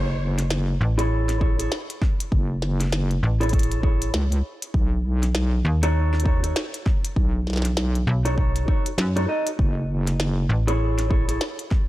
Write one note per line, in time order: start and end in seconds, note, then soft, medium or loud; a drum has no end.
0.00 0.78 F#1 loud
0.39 snare soft
0.39 closed hi-hat medium
0.50 snare loud
0.81 1.70 A1 loud
0.98 1.38 E4 medium
0.98 1.38 G#4 medium
0.98 1.38 A4 medium
0.98 1.38 C#5 loud
0.98 closed hi-hat medium
1.29 snare soft
1.29 closed hi-hat medium
1.40 1.56 E4 medium
1.40 1.56 G#4 medium
1.40 1.56 A4 medium
1.40 1.56 C#5 medium
1.40 kick loud
1.59 1.71 E4 medium
1.59 1.71 G#4 medium
1.59 1.71 A4 medium
1.59 1.71 C#5 medium
1.59 closed hi-hat medium
1.72 snare loud
1.90 closed hi-hat medium
2.02 kick loud
2.02 snare soft
2.20 closed hi-hat medium
2.32 3.21 F#1 medium
2.32 kick loud
2.62 snare medium
2.81 snare soft
2.81 closed hi-hat medium
2.83 snare soft
2.86 snare soft
2.89 snare soft
2.92 snare loud
3.11 closed hi-hat soft
3.23 4.12 A1 medium
3.40 3.51 E4 medium
3.40 3.51 G#4 medium
3.40 3.51 A4 medium
3.40 3.51 C#5 medium
3.40 closed hi-hat soft
3.43 closed hi-hat soft
3.49 3.80 E4 medium
3.49 3.80 G#4 medium
3.49 kick loud
3.49 closed hi-hat soft
3.53 3.80 A4 medium
3.53 3.80 C#5 medium
3.53 closed hi-hat soft
3.59 closed hi-hat medium
3.63 closed hi-hat medium
3.72 closed hi-hat medium
3.83 4.09 E4 medium
3.83 4.09 G#4 medium
3.83 4.09 A4 medium
3.83 4.09 C#5 medium
3.83 kick loud
4.02 closed hi-hat medium
4.14 4.42 C#2 loud
4.14 snare loud
4.32 closed hi-hat medium
4.62 closed hi-hat medium
4.74 5.63 B1 loud
4.74 kick loud
5.23 snare soft
5.23 closed hi-hat medium
5.35 snare loud
5.65 6.54 D#2 loud
5.83 6.23 D#4 medium
5.83 6.23 F#4 medium
5.83 6.23 A4 medium
5.83 6.23 C#5 loud
5.83 closed hi-hat medium
6.14 snare soft
6.20 closed hi-hat medium
6.25 6.41 D#4 medium
6.25 6.41 F#4 medium
6.25 6.41 A4 medium
6.25 6.41 C#5 medium
6.25 kick loud
6.43 6.56 D#4 medium
6.43 6.56 F#4 medium
6.43 6.56 A4 medium
6.43 6.56 C#5 medium
6.43 closed hi-hat medium
6.56 snare loud
6.74 closed hi-hat medium
6.86 kick loud
6.86 snare soft
7.05 closed hi-hat medium
7.16 8.05 B1 loud
7.16 kick loud
7.47 snare soft
7.50 snare soft
7.53 snare soft
7.56 snare soft
7.62 snare medium
7.65 snare soft
7.65 closed hi-hat medium
7.77 snare loud
7.95 closed hi-hat soft
8.07 8.66 B1 medium
8.25 8.36 D#4 medium
8.25 8.36 F#4 medium
8.25 8.36 A4 medium
8.25 8.36 C#5 medium
8.25 closed hi-hat medium
8.37 8.65 D#4 medium
8.37 8.65 F#4 medium
8.37 8.65 A4 medium
8.37 8.65 C#5 medium
8.37 kick loud
8.56 closed hi-hat medium
8.68 8.86 D#4 medium
8.68 8.86 F#4 medium
8.68 8.86 A4 medium
8.68 8.86 C#5 loud
8.68 kick loud
8.86 closed hi-hat medium
8.98 9.27 F#2 loud
8.98 snare loud
9.16 9.27 D#4 medium
9.16 9.27 F#4 medium
9.16 9.27 A4 medium
9.16 9.27 C#5 medium
9.16 closed hi-hat medium
9.28 9.47 D#4 medium
9.28 9.47 F#4 medium
9.28 9.47 A4 medium
9.28 9.47 D#5 medium
9.47 closed hi-hat medium
9.59 10.48 F#1 loud
9.59 kick loud
10.07 snare soft
10.07 closed hi-hat medium
10.20 snare loud
10.49 11.39 A1 medium
10.67 11.07 E4 medium
10.67 11.08 G#4 medium
10.67 11.08 A4 medium
10.67 11.08 C#5 loud
10.67 closed hi-hat medium
10.99 snare soft
10.99 closed hi-hat medium
11.10 11.26 E4 medium
11.10 11.26 G#4 medium
11.10 11.26 A4 medium
11.10 11.26 C#5 medium
11.10 kick loud
11.28 11.41 E4 medium
11.28 11.41 G#4 medium
11.28 11.41 A4 medium
11.28 11.41 C#5 medium
11.28 closed hi-hat medium
11.41 snare loud
11.59 closed hi-hat soft
11.71 kick loud
11.71 snare soft